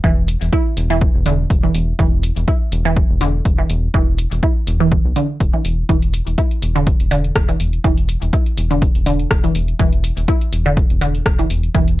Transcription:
0.04 E1 E3, kick
0.28 open hi-hat
0.41 E1, open hi-hat
0.53 E4, kick
0.77 E1, open hi-hat
0.90 E3
1.01 kick
1.15 E1
1.26 D3, open hi-hat
1.50 E1, kick, open hi-hat
1.63 E3
1.75 E1, open hi-hat
1.99 E1 E3, kick
2.23 open hi-hat
2.36 E1, open hi-hat
2.48 E4, kick
2.72 E1, open hi-hat
2.85 E3
2.97 kick
3.10 E1
3.21 D3, open hi-hat
3.45 E1, kick, open hi-hat
3.59 E3
3.70 E1, open hi-hat
3.94 E1 E3, kick
4.18 open hi-hat
4.32 E1, open hi-hat
4.43 E4, kick
4.67 E1, open hi-hat
4.80 E3
4.92 kick
5.05 B1
5.16 D3, open hi-hat
5.40 D1, kick, open hi-hat
5.54 E3
5.65 E1, open hi-hat
5.89 E1 E3, kick, closed hi-hat
6.02 closed hi-hat
6.14 open hi-hat
6.27 E1, open hi-hat
6.38 E4, kick, closed hi-hat
6.51 closed hi-hat
6.62 E1, open hi-hat
6.76 D3, closed hi-hat
6.87 kick, closed hi-hat
7.00 E1, closed hi-hat
7.11 D3, open hi-hat
7.24 closed hi-hat
7.36 E1, kick, cross-stick, open hi-hat
7.49 E3, closed hi-hat
7.60 E1, open hi-hat
7.73 closed hi-hat
7.84 E1 E3, kick, closed hi-hat
7.98 closed hi-hat
8.09 open hi-hat
8.22 E1, open hi-hat
8.33 E4, kick, closed hi-hat
8.46 closed hi-hat
8.57 E1, open hi-hat
8.71 D3, closed hi-hat
8.82 kick, closed hi-hat
8.95 E1, closed hi-hat
9.06 D3, open hi-hat
9.19 closed hi-hat
9.31 E1, kick, cross-stick, open hi-hat
9.44 E3, closed hi-hat
9.55 E1, open hi-hat
9.68 closed hi-hat
9.79 E1 E3, kick, closed hi-hat
9.93 closed hi-hat
10.04 open hi-hat
10.17 E1, open hi-hat
10.28 E4, kick, closed hi-hat
10.41 closed hi-hat
10.53 E1, open hi-hat
10.66 D3, closed hi-hat
10.77 kick, closed hi-hat
10.90 E1, closed hi-hat
11.01 D3, open hi-hat
11.15 closed hi-hat
11.26 E1, kick, cross-stick, open hi-hat
11.39 E3, closed hi-hat
11.50 E1, open hi-hat
11.63 closed hi-hat
11.75 E1 E3, kick, closed hi-hat
11.88 closed hi-hat

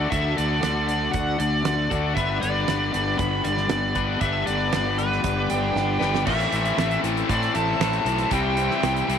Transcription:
Already playing: A3 D4 F#4 A4 D5
0.10 D2 D3 D4 F#4 A4 E5, kick, closed hi-hat
0.37 D2 D5, closed hi-hat
0.63 D2, snare, closed hi-hat
0.88 D5, closed hi-hat
1.12 D2 F#5, kick, closed hi-hat
1.38 D2 D5, closed hi-hat
1.65 D2, snare, closed hi-hat
1.90 D2 D3 D4 F#4 A4, kick, closed hi-hat
2.15 G1 G3 B3 D4 G4 B4 D5 E5, kick, closed hi-hat
2.41 G1 D5, closed hi-hat
2.68 G1, snare, closed hi-hat
2.93 G1 D5, closed hi-hat
3.18 G1 B5, kick, closed hi-hat
3.44 G1 D5, closed hi-hat
3.57 snare
3.69 G1, snare, closed hi-hat
3.95 G3 B3 D4 B4, kick, closed hi-hat
4.20 G1 G3 B3 D4 B4 E5, kick, closed hi-hat
4.47 G1 D5, closed hi-hat
4.73 G1 D5, snare, closed hi-hat
4.98 B4, closed hi-hat
5.12 snare
5.24 G1, kick, closed hi-hat
5.50 G1 G5, closed hi-hat
5.76 G1, snare
6.00 G1 G3 B3 D4 B4, snare
6.15 snare
6.26 A1 A2 E3 A3 C4 C#4 E4 F4 A#4 E5 F5, kick, crash
6.40 closed hi-hat
6.45 C4 E4 A4 E5
6.52 A1 A2 E3 A3 C4 E4, closed hi-hat
6.65 closed hi-hat
6.77 A1 A2 E3 A3 C4 E4, snare, closed hi-hat
6.91 closed hi-hat
7.03 A1 A2 E3 A3 C4 E4, closed hi-hat
7.17 closed hi-hat
7.29 A2 E3 A3 C4 E4 D5, kick, closed hi-hat
7.43 closed hi-hat
7.55 A1 A2 E3 A3 C4 E4 A5, closed hi-hat
7.80 A1 A2 E3 A3 C4 E4, snare, closed hi-hat
7.93 closed hi-hat
8.05 B1 A2 E3 A3 C4 E4, closed hi-hat
8.18 closed hi-hat
8.31 C2 C3 E3 G3 C4 E4 G4 E5 G5, kick, closed hi-hat
8.56 C3 E3 G3 C4 E4, closed hi-hat
8.71 snare
8.83 C2 C3 E3 G3 C4 E4, snare, closed hi-hat
8.96 closed hi-hat
9.08 C2 C3 E3 G3 C4 E4, closed hi-hat

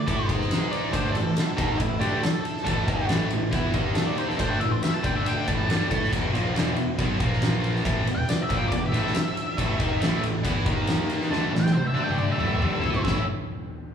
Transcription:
Already playing: D5
0.07 A2 A3 E4 A4, kick, ride
0.28 G#2 G#3 D#4 G#4, kick, ride
0.41 snare
0.51 snare, ride
0.71 D5, ride
0.92 D2 D3 A3 D4 C5, kick, ride
1.13 A1 A2 E3 A4, ride
1.37 snare, ride
1.57 D#2 D#3 A#3 D#4, kick, ride
1.78 A1 A2 E3 E4, kick, ride
2.00 D2 D3 A3 D4 G4, ride
2.23 A4, snare, ride
2.45 ride
2.57 snare
2.64 A1 A2 E3 A3, kick, ride
2.87 D#2 D#3 A#3 D#4, kick, ride
3.08 A1 A2 E3 A3, snare, ride
3.30 A1 A2 E3, ride
3.51 E2 E3 B3 E4, kick, ride
3.74 D#2 D#3 A#3 D#4, kick, ride
3.95 A4, snare, ride
4.07 D5
4.18 C5, ride
4.28 A4, snare
4.38 D2 D3 A3 D4 C5, kick, ride
4.50 G5
4.60 A1 A2 E3 E5, ride
4.72 C5
4.83 E5, snare, ride
4.94 A5
5.03 D2 D3 A3 D4 G5, kick, ride
5.16 E5
5.26 G5, ride
5.47 A1 A2 E3 A3 A5, kick, ride
5.68 G1 G2 D3 G3, snare, ride
5.91 A2 A3 E4 A4, kick, ride
6.04 snare
6.11 E1 E2 B2 E3, kick, ride
6.33 A#1 A#2 F3 A#3, ride
6.53 E1 E2 B2 E3, ride
6.57 snare
6.76 E1 E2 B2, ride
6.99 B1 B2 F#3 B3, kick, ride
7.20 A#1 A#2 F3 A#3, kick, ride
7.33 snare
7.42 snare, ride
7.64 ride
7.76 snare
7.85 A1 A2 E3 A3, kick, ride
8.06 E1 E2 B2, ride
8.15 G5
8.29 D5, snare, ride
8.42 E5
8.50 A#1 A#2 F3 A#3, kick, ride
8.56 G5
8.69 E1 E2 B2 D5, kick, ride
8.86 E5
8.92 A1 A2 E3 A3, ride
9.00 E5
9.07 snare
9.15 snare, ride
9.37 ride
9.57 A1 A2 E3 A3, kick, ride
9.79 D#2 D#3 A#3 D#4, kick, ride
10.00 A1 A2 E3 A3, snare, ride
10.22 A1 A2 E3, ride
10.44 E2 E3 B3 E4, kick, ride
10.66 D#2 D#3 A#3 D#4, kick, ride
10.87 snare, ride
11.10 ride
11.21 snare
11.29 D2 D3 A3 D4, snare
11.51 A1 A2 E3
11.55 snare
11.60 G5
11.66 snare
11.72 C5, high tom
11.87 E5
11.94 D2 D3 A3 D4, high tom
12.04 G5
12.09 mid tom
12.18 D5, mid tom
12.32 E5
12.38 A1 A2 E3 A3, mid tom
12.47 E5
12.51 mid tom
12.59 G1 G2 D3 G3, mid tom
12.80 A2 A3 E4 A4
12.84 floor tom
12.94 floor tom
13.03 A1 A2 E3 A3 C#4 E4 E5, kick, snare

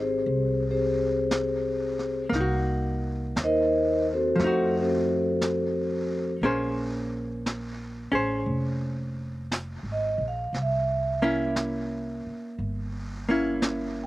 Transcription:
Already playing: G#1 G#3 C4 D#4
0.00 C4 G4 G#4 C5
0.26 C2, brush sweep
0.70 C4 G4 G#4 C5
1.31 brush sweep, snare, hi-hat pedal
1.99 snare
2.30 C2 A#3, brush sweep, snare
2.36 D#4
2.41 F#4
3.36 D#2, brush sweep, snare, hi-hat pedal
3.44 D#4 A#4 C5 D#5
4.13 C4 F#4 A4 C5
4.36 F2 F3, brush sweep, snare
4.40 A3
4.44 D#4 F#4
4.80 C4 F#4 A4 C5
5.41 brush sweep, snare, hi-hat pedal
6.41 A#1 A#3 C#4 G#4 C5, brush sweep
7.46 brush sweep, snare, hi-hat pedal
8.12 A1 C#4 G#4 C5
8.46 F1, brush sweep
9.51 brush sweep, snare, hi-hat pedal
9.83 G#1
9.92 D#5
10.18 A#1
10.28 F5
10.53 C2, brush sweep, snare
10.62 E5
11.22 A#3 C#4 E4
11.56 brush sweep, snare, hi-hat pedal
12.26 muted upright bass stroke
12.59 G1, brush sweep
13.29 A#3 C#4 E4
13.62 brush sweep, snare, hi-hat pedal
14.04 G5

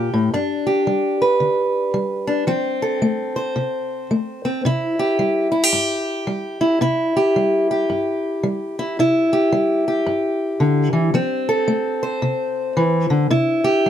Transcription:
Already playing: A#2 G4
0.14 A2
0.34 G2 D4
0.67 G4
0.87 G3
1.22 B4
1.40 D3
1.94 G3
2.27 D4
2.47 F3 C4
2.82 A4
3.02 A3
3.36 C5
3.56 C3
4.11 A3
4.45 C4
4.65 C3 E4
4.99 G4
5.19 G3
5.52 E4
5.64 G4
5.73 G2
6.27 G3
6.61 E4
6.81 C3 E4
7.17 G4
7.36 G3
7.71 G4
7.90 G2
8.43 G3
8.79 E4
8.99 C3 E4
9.33 G4
9.52 G3
9.88 G4
10.06 G2
10.60 D3
10.93 E3
11.14 F3 C4
11.49 A4
11.68 A3
12.03 C5
12.22 C3
12.77 E3
13.10 D3
13.30 C3 E4
13.64 G4
13.86 G3

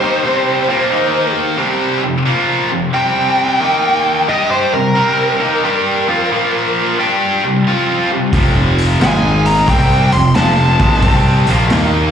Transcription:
Already playing: C5
0.01 D#3 A#3 D#4
0.24 C3 G3 C4
0.69 A#2 F3 A#3
0.91 D#3 A#3 D#4
1.57 C3 G3 C4
2.03 F2 C3
2.25 A#2 F3 A#3
2.70 F2 C3
2.94 C3 G3 C4 G5
3.60 D#3 A#3 D#4
4.28 G3 D4 G4 D#5
4.51 C5
4.73 C3 G3 A#4
4.95 C3 G3 C4
5.40 D#3 A#3 D#4
5.63 G3 D4 G4
6.08 F3 C4 F4
6.31 A#2 F3 A#3
6.99 G3 D4 G4
7.44 C3 G3
7.67 F3 C4 F4
8.11 C3 G3
8.33 F1 F2 C3 F3, kick, open hi-hat
8.78 open hi-hat
9.00 G#1 G#2 D#3 G#3 G#5, snare, open hi-hat
9.45 A#5, open hi-hat
9.68 C2 C3 G3 C4 G5, kick, open hi-hat
10.12 F1 F2 C3 C6, open hi-hat
10.35 F1 F2 C3 F3 A5, snare, open hi-hat
10.79 G#1 G#2 D#3 G#3, kick, open hi-hat
10.93 snare
11.02 C2 C3 G3 C4, kick, open hi-hat
11.47 A#1 A#2 F3 A#3, open hi-hat
11.70 D#2 D#3 A#3 D#4, snare, open hi-hat

